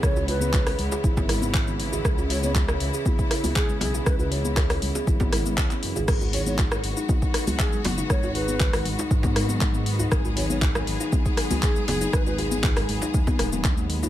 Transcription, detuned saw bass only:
\new Staff \with { instrumentName = "Detuned saw bass" } { \clef bass \time 4/4 \key cis \minor \tempo 4 = 119 cis,4. cis,16 r16 gis,,2 | cis,4. cis,16 r4. r16 b,,16 r16 | cis,4. cis,16 r16 gis,,4 cis,16 r16 fis,16 gis,,16 | gis,,4. gis,,16 r4. r16 fis,,16 r16 |
gis,,4. gis,,16 r16 gis,2 | gis,,4. gis,,16 r4. r16 fis,,16 r16 | gis,,4. gis,,16 r16 dis,16 r16 dis,,8 dis,4 | }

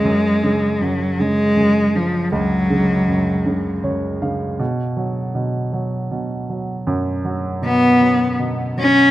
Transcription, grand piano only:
\new Staff \with { instrumentName = "Grand piano" } { \clef bass \time 6/8 \key ges \lydian \tempo 4. = 53 ges,8 des8 ges,8 des8 ges,8 des8 | des,8 des8 ges,8 des8 <ges, des''>8 <des f''>8 | ces8 ges8 ces8 ges8 ces8 ges8 | ges,8 ges8 ces8 ges8 ces8 ges8 | }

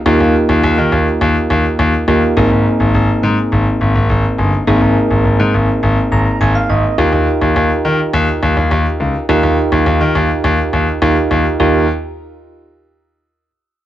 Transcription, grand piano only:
\new Staff \with { instrumentName = "Grand piano" } { \clef bass \time 4/4 \key ees \major \tempo 4 = 104 ees,16 ees,16 r16 ees,16 ees,16 ees16 ees,16 r16 ees,16 r16 ees,16 r16 ees,16 r16 ees,16 r16 | aes,,16 aes,,16 r16 aes,,16 aes,,16 r16 aes,16 r16 aes,,16 r16 aes,,16 aes,,16 aes,,16 r16 g,,16 r16 | aes,,16 aes,,16 r16 aes,,16 aes,,16 aes,16 aes,,16 r16 aes,,16 r16 aes,,16 r16 aes,,16 r16 aes,,16 r16 | ees,16 ees,16 r16 ees,16 ees,16 r16 ees16 r16 ees,16 r16 ees,16 ees,16 ees,16 r16 des,16 r16 |
ees,16 ees,16 r16 ees,16 ees,16 ees16 ees,16 r16 ees,16 r16 ees,16 r16 ees,16 r16 ees,16 r16 | ees,8 r2. r8 | }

